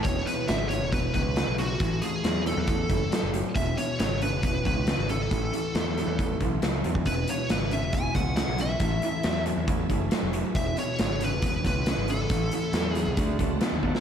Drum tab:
HH |x-x-x-x-x-x-x-x-|x-x-x-x-x-x-x-x-|x-x-x-x-x-x-x-x-|x-x-x-x-x-x-x-x-|
SD |----o-------o---|----o-------o---|----o-------o---|----o-------o---|
BD |o-------o-o-----|o-------o-o-----|o-------o-o-----|o-------o-o----o|

HH |x-x-x-x-x-x-x-x-|x-x-x-x-x-x-x-x-|x-x-x-x-x-x-x-x-|x-x-x-x-x-x-x---|
SD |----o-------o---|----o-------o---|----o-------o---|----o-------o--o|
BD |o-------o-o-----|o-------o-o-----|o-------o-o-----|o-------o-o---o-|